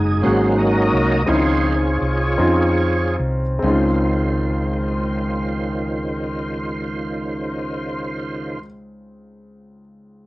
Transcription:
0, 0, Header, 1, 4, 480
1, 0, Start_track
1, 0, Key_signature, -5, "major"
1, 0, Tempo, 674157
1, 904, Time_signature, 6, 3, 24, 8
1, 904, Tempo, 727273
1, 1384, Tempo, 781250
1, 1864, Tempo, 853485
1, 2344, Tempo, 895522
1, 5900, End_track
2, 0, Start_track
2, 0, Title_t, "Tonewheel organ"
2, 0, Program_c, 0, 16
2, 0, Note_on_c, 0, 63, 48
2, 0, Note_on_c, 0, 68, 70
2, 152, Note_off_c, 0, 63, 0
2, 158, Note_on_c, 0, 54, 45
2, 164, Note_on_c, 0, 63, 58
2, 166, Note_on_c, 0, 72, 84
2, 168, Note_on_c, 0, 61, 50
2, 171, Note_on_c, 0, 58, 41
2, 172, Note_on_c, 0, 66, 61
2, 199, Note_off_c, 0, 68, 0
2, 411, Note_off_c, 0, 66, 0
2, 413, Note_on_c, 0, 75, 87
2, 416, Note_off_c, 0, 72, 0
2, 420, Note_on_c, 0, 66, 70
2, 420, Note_on_c, 0, 70, 67
2, 866, Note_off_c, 0, 54, 0
2, 868, Note_off_c, 0, 63, 0
2, 871, Note_off_c, 0, 61, 0
2, 872, Note_off_c, 0, 58, 0
2, 878, Note_off_c, 0, 66, 0
2, 879, Note_off_c, 0, 70, 0
2, 908, Note_on_c, 0, 53, 41
2, 910, Note_on_c, 0, 73, 81
2, 912, Note_on_c, 0, 72, 41
2, 914, Note_on_c, 0, 65, 53
2, 915, Note_on_c, 0, 63, 53
2, 917, Note_off_c, 0, 75, 0
2, 917, Note_on_c, 0, 68, 55
2, 1222, Note_off_c, 0, 53, 0
2, 1224, Note_off_c, 0, 72, 0
2, 1226, Note_off_c, 0, 63, 0
2, 2078, Note_off_c, 0, 73, 0
2, 2080, Note_off_c, 0, 65, 0
2, 2081, Note_off_c, 0, 68, 0
2, 2341, Note_on_c, 0, 49, 45
2, 2341, Note_on_c, 0, 51, 45
2, 2345, Note_on_c, 0, 72, 46
2, 2347, Note_on_c, 0, 65, 58
2, 5000, Note_off_c, 0, 49, 0
2, 5000, Note_off_c, 0, 51, 0
2, 5004, Note_off_c, 0, 72, 0
2, 5005, Note_off_c, 0, 65, 0
2, 5900, End_track
3, 0, Start_track
3, 0, Title_t, "Grand piano"
3, 0, Program_c, 1, 0
3, 0, Control_c, 1, 64, 127
3, 0, Note_on_c, 1, 44, 56
3, 0, Note_on_c, 1, 61, 67
3, 0, Note_on_c, 1, 63, 60
3, 0, Note_on_c, 1, 66, 59
3, 0, Note_on_c, 1, 68, 69
3, 79, Note_off_c, 1, 61, 0
3, 149, Note_off_c, 1, 44, 0
3, 167, Note_on_c, 1, 58, 55
3, 168, Note_on_c, 1, 61, 51
3, 171, Note_on_c, 1, 44, 54
3, 175, Note_off_c, 1, 66, 0
3, 175, Note_on_c, 1, 66, 53
3, 179, Note_off_c, 1, 68, 0
3, 179, Note_on_c, 1, 68, 65
3, 186, Control_c, 1, 64, 0
3, 193, Note_off_c, 1, 63, 0
3, 290, Control_c, 1, 64, 127
3, 772, Note_off_c, 1, 58, 0
3, 773, Note_off_c, 1, 61, 0
3, 776, Note_off_c, 1, 66, 0
3, 778, Note_off_c, 1, 68, 0
3, 872, Note_off_c, 1, 44, 0
3, 900, Note_on_c, 1, 60, 62
3, 905, Note_on_c, 1, 51, 53
3, 907, Note_on_c, 1, 61, 65
3, 908, Note_on_c, 1, 63, 61
3, 913, Control_c, 1, 64, 0
3, 915, Note_on_c, 1, 64, 58
3, 957, Note_off_c, 1, 64, 0
3, 960, Note_on_c, 1, 65, 69
3, 1044, Control_c, 1, 64, 127
3, 1497, Note_off_c, 1, 60, 0
3, 1500, Note_off_c, 1, 61, 0
3, 1501, Note_off_c, 1, 63, 0
3, 1525, Note_off_c, 1, 65, 0
3, 1595, Note_off_c, 1, 51, 0
3, 1618, Note_on_c, 1, 60, 63
3, 1622, Note_on_c, 1, 61, 61
3, 1625, Note_on_c, 1, 63, 58
3, 1629, Note_on_c, 1, 65, 69
3, 2217, Note_off_c, 1, 60, 0
3, 2219, Note_off_c, 1, 61, 0
3, 2221, Note_off_c, 1, 63, 0
3, 2223, Note_off_c, 1, 65, 0
3, 2321, Note_on_c, 1, 60, 61
3, 2341, Note_on_c, 1, 61, 57
3, 2348, Note_on_c, 1, 37, 61
3, 2352, Control_c, 1, 64, 0
3, 2356, Note_on_c, 1, 63, 57
3, 2369, Note_on_c, 1, 65, 68
3, 2461, Control_c, 1, 64, 127
3, 4981, Note_off_c, 1, 60, 0
3, 5000, Note_off_c, 1, 61, 0
3, 5006, Note_off_c, 1, 37, 0
3, 5015, Note_off_c, 1, 63, 0
3, 5027, Note_off_c, 1, 65, 0
3, 5900, End_track
4, 0, Start_track
4, 0, Title_t, "Fingered electric bass"
4, 0, Program_c, 2, 33
4, 0, Note_on_c, 2, 30, 75
4, 159, Note_off_c, 2, 30, 0
4, 188, Note_on_c, 2, 32, 85
4, 633, Note_off_c, 2, 32, 0
4, 662, Note_on_c, 2, 36, 68
4, 888, Note_off_c, 2, 36, 0
4, 913, Note_on_c, 2, 37, 92
4, 1362, Note_off_c, 2, 37, 0
4, 1393, Note_on_c, 2, 36, 63
4, 1605, Note_off_c, 2, 36, 0
4, 1621, Note_on_c, 2, 41, 67
4, 2077, Note_off_c, 2, 41, 0
4, 2098, Note_on_c, 2, 36, 69
4, 2324, Note_off_c, 2, 36, 0
4, 2342, Note_on_c, 2, 37, 81
4, 5001, Note_off_c, 2, 37, 0
4, 5900, End_track
0, 0, End_of_file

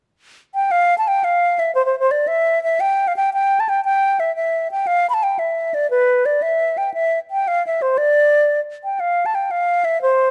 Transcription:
0, 0, Header, 1, 2, 480
1, 0, Start_track
1, 0, Tempo, 345622
1, 978, Time_signature, 6, 3, 24, 8
1, 14314, End_track
2, 0, Start_track
2, 0, Title_t, "Flute"
2, 0, Program_c, 0, 73
2, 758, Note_on_c, 0, 79, 88
2, 990, Note_on_c, 0, 77, 104
2, 1011, Note_off_c, 0, 79, 0
2, 1354, Note_off_c, 0, 77, 0
2, 1362, Note_on_c, 0, 81, 84
2, 1496, Note_on_c, 0, 79, 91
2, 1517, Note_off_c, 0, 81, 0
2, 1725, Note_on_c, 0, 77, 88
2, 1745, Note_off_c, 0, 79, 0
2, 2210, Note_on_c, 0, 76, 76
2, 2231, Note_off_c, 0, 77, 0
2, 2420, Note_off_c, 0, 76, 0
2, 2429, Note_on_c, 0, 72, 94
2, 2570, Note_off_c, 0, 72, 0
2, 2579, Note_on_c, 0, 72, 70
2, 2752, Note_off_c, 0, 72, 0
2, 2769, Note_on_c, 0, 72, 92
2, 2933, Note_on_c, 0, 74, 80
2, 2954, Note_off_c, 0, 72, 0
2, 3161, Note_on_c, 0, 76, 84
2, 3182, Note_off_c, 0, 74, 0
2, 3644, Note_off_c, 0, 76, 0
2, 3661, Note_on_c, 0, 76, 81
2, 3893, Note_on_c, 0, 79, 96
2, 3914, Note_off_c, 0, 76, 0
2, 4274, Note_on_c, 0, 77, 78
2, 4295, Note_off_c, 0, 79, 0
2, 4372, Note_off_c, 0, 77, 0
2, 4394, Note_on_c, 0, 79, 87
2, 4588, Note_off_c, 0, 79, 0
2, 4631, Note_on_c, 0, 79, 88
2, 4999, Note_on_c, 0, 81, 73
2, 5020, Note_off_c, 0, 79, 0
2, 5123, Note_on_c, 0, 79, 87
2, 5143, Note_off_c, 0, 81, 0
2, 5327, Note_off_c, 0, 79, 0
2, 5342, Note_on_c, 0, 79, 103
2, 5829, Note_on_c, 0, 76, 80
2, 5850, Note_off_c, 0, 79, 0
2, 6041, Note_off_c, 0, 76, 0
2, 6057, Note_on_c, 0, 76, 68
2, 6502, Note_off_c, 0, 76, 0
2, 6548, Note_on_c, 0, 79, 77
2, 6762, Note_on_c, 0, 77, 93
2, 6783, Note_off_c, 0, 79, 0
2, 7070, Note_off_c, 0, 77, 0
2, 7079, Note_on_c, 0, 83, 62
2, 7135, Note_on_c, 0, 81, 83
2, 7156, Note_off_c, 0, 83, 0
2, 7265, Note_on_c, 0, 79, 75
2, 7286, Note_off_c, 0, 81, 0
2, 7484, Note_on_c, 0, 76, 64
2, 7505, Note_off_c, 0, 79, 0
2, 7974, Note_on_c, 0, 74, 74
2, 7995, Note_off_c, 0, 76, 0
2, 8192, Note_off_c, 0, 74, 0
2, 8200, Note_on_c, 0, 71, 81
2, 8688, Note_on_c, 0, 74, 69
2, 8709, Note_off_c, 0, 71, 0
2, 8919, Note_on_c, 0, 76, 74
2, 8940, Note_off_c, 0, 74, 0
2, 9411, Note_on_c, 0, 79, 67
2, 9431, Note_off_c, 0, 76, 0
2, 9628, Note_off_c, 0, 79, 0
2, 9637, Note_on_c, 0, 76, 88
2, 9986, Note_off_c, 0, 76, 0
2, 10149, Note_on_c, 0, 79, 78
2, 10385, Note_on_c, 0, 77, 84
2, 10406, Note_off_c, 0, 79, 0
2, 10632, Note_off_c, 0, 77, 0
2, 10647, Note_on_c, 0, 76, 71
2, 10859, Note_on_c, 0, 72, 74
2, 10880, Note_off_c, 0, 76, 0
2, 11078, Note_on_c, 0, 74, 97
2, 11099, Note_off_c, 0, 72, 0
2, 11953, Note_off_c, 0, 74, 0
2, 12278, Note_on_c, 0, 79, 62
2, 12498, Note_on_c, 0, 77, 78
2, 12519, Note_off_c, 0, 79, 0
2, 12858, Note_on_c, 0, 81, 76
2, 12879, Note_off_c, 0, 77, 0
2, 12983, Note_on_c, 0, 79, 69
2, 13004, Note_off_c, 0, 81, 0
2, 13207, Note_on_c, 0, 77, 71
2, 13228, Note_off_c, 0, 79, 0
2, 13673, Note_on_c, 0, 76, 77
2, 13694, Note_off_c, 0, 77, 0
2, 13906, Note_off_c, 0, 76, 0
2, 13914, Note_on_c, 0, 72, 93
2, 14314, Note_off_c, 0, 72, 0
2, 14314, End_track
0, 0, End_of_file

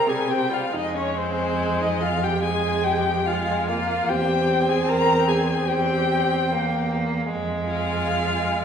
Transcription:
0, 0, Header, 1, 5, 480
1, 0, Start_track
1, 0, Key_signature, -4, "minor"
1, 0, Tempo, 864553
1, 406, Time_signature, 4, 2, 24, 8
1, 881, Tempo, 829876
1, 2321, Tempo, 808625
1, 3761, Tempo, 779221
1, 5082, End_track
2, 0, Start_track
2, 0, Title_t, "Violin"
2, 0, Program_c, 0, 40
2, 0, Note_on_c, 0, 82, 81
2, 50, Note_on_c, 0, 80, 72
2, 58, Note_off_c, 0, 82, 0
2, 167, Note_on_c, 0, 79, 79
2, 175, Note_off_c, 0, 80, 0
2, 297, Note_on_c, 0, 77, 73
2, 305, Note_off_c, 0, 79, 0
2, 413, Note_on_c, 0, 75, 85
2, 421, Note_off_c, 0, 77, 0
2, 529, Note_off_c, 0, 75, 0
2, 535, Note_on_c, 0, 73, 67
2, 653, Note_on_c, 0, 72, 77
2, 661, Note_off_c, 0, 73, 0
2, 1017, Note_on_c, 0, 75, 70
2, 1026, Note_off_c, 0, 72, 0
2, 1129, Note_on_c, 0, 77, 78
2, 1138, Note_off_c, 0, 75, 0
2, 1256, Note_on_c, 0, 79, 79
2, 1265, Note_off_c, 0, 77, 0
2, 1366, Note_off_c, 0, 79, 0
2, 1369, Note_on_c, 0, 80, 83
2, 1605, Note_on_c, 0, 79, 78
2, 1614, Note_off_c, 0, 80, 0
2, 1848, Note_on_c, 0, 77, 77
2, 1856, Note_off_c, 0, 79, 0
2, 2086, Note_off_c, 0, 77, 0
2, 2092, Note_on_c, 0, 77, 79
2, 2327, Note_on_c, 0, 79, 87
2, 2336, Note_off_c, 0, 77, 0
2, 2687, Note_on_c, 0, 80, 84
2, 2695, Note_off_c, 0, 79, 0
2, 2802, Note_on_c, 0, 82, 98
2, 2811, Note_off_c, 0, 80, 0
2, 3037, Note_on_c, 0, 80, 77
2, 3046, Note_off_c, 0, 82, 0
2, 3275, Note_on_c, 0, 79, 87
2, 3284, Note_off_c, 0, 80, 0
2, 4009, Note_off_c, 0, 79, 0
2, 4487, Note_on_c, 0, 77, 86
2, 5082, Note_off_c, 0, 77, 0
2, 5082, End_track
3, 0, Start_track
3, 0, Title_t, "Viola"
3, 0, Program_c, 1, 41
3, 40, Note_on_c, 1, 68, 65
3, 163, Note_on_c, 1, 67, 68
3, 172, Note_off_c, 1, 68, 0
3, 277, Note_off_c, 1, 67, 0
3, 280, Note_on_c, 1, 65, 65
3, 406, Note_on_c, 1, 63, 74
3, 414, Note_off_c, 1, 65, 0
3, 526, Note_on_c, 1, 61, 63
3, 534, Note_off_c, 1, 63, 0
3, 644, Note_on_c, 1, 60, 62
3, 652, Note_off_c, 1, 61, 0
3, 1008, Note_on_c, 1, 63, 61
3, 1016, Note_off_c, 1, 60, 0
3, 1126, Note_on_c, 1, 65, 66
3, 1134, Note_off_c, 1, 63, 0
3, 1251, Note_on_c, 1, 67, 65
3, 1260, Note_off_c, 1, 65, 0
3, 1367, Note_on_c, 1, 68, 76
3, 1376, Note_off_c, 1, 67, 0
3, 1609, Note_on_c, 1, 67, 71
3, 1618, Note_off_c, 1, 68, 0
3, 1849, Note_on_c, 1, 65, 74
3, 1858, Note_off_c, 1, 67, 0
3, 2078, Note_off_c, 1, 65, 0
3, 2081, Note_on_c, 1, 65, 76
3, 2329, Note_on_c, 1, 67, 77
3, 2338, Note_off_c, 1, 65, 0
3, 2684, Note_on_c, 1, 68, 72
3, 2693, Note_off_c, 1, 67, 0
3, 2802, Note_on_c, 1, 70, 83
3, 2811, Note_off_c, 1, 68, 0
3, 3030, Note_on_c, 1, 68, 69
3, 3039, Note_off_c, 1, 70, 0
3, 3266, Note_on_c, 1, 67, 81
3, 3274, Note_off_c, 1, 68, 0
3, 4004, Note_off_c, 1, 67, 0
3, 4479, Note_on_c, 1, 65, 71
3, 5082, Note_off_c, 1, 65, 0
3, 5082, End_track
4, 0, Start_track
4, 0, Title_t, "Violin"
4, 0, Program_c, 2, 40
4, 34, Note_on_c, 2, 55, 45
4, 153, Note_on_c, 2, 60, 49
4, 161, Note_off_c, 2, 55, 0
4, 277, Note_on_c, 2, 55, 47
4, 285, Note_off_c, 2, 60, 0
4, 395, Note_off_c, 2, 55, 0
4, 399, Note_on_c, 2, 56, 64
4, 1336, Note_off_c, 2, 56, 0
4, 1359, Note_on_c, 2, 56, 58
4, 1832, Note_off_c, 2, 56, 0
4, 1847, Note_on_c, 2, 56, 59
4, 2096, Note_on_c, 2, 58, 59
4, 2104, Note_off_c, 2, 56, 0
4, 2330, Note_on_c, 2, 60, 69
4, 2339, Note_off_c, 2, 58, 0
4, 3276, Note_off_c, 2, 60, 0
4, 3281, Note_on_c, 2, 60, 61
4, 3773, Note_on_c, 2, 58, 59
4, 3782, Note_off_c, 2, 60, 0
4, 4247, Note_off_c, 2, 58, 0
4, 4251, Note_on_c, 2, 56, 68
4, 5082, Note_off_c, 2, 56, 0
4, 5082, End_track
5, 0, Start_track
5, 0, Title_t, "Cello"
5, 0, Program_c, 3, 42
5, 0, Note_on_c, 3, 48, 73
5, 269, Note_off_c, 3, 48, 0
5, 407, Note_on_c, 3, 41, 63
5, 2299, Note_off_c, 3, 41, 0
5, 2325, Note_on_c, 3, 40, 65
5, 4253, Note_on_c, 3, 41, 65
5, 4263, Note_off_c, 3, 40, 0
5, 5082, Note_off_c, 3, 41, 0
5, 5082, End_track
0, 0, End_of_file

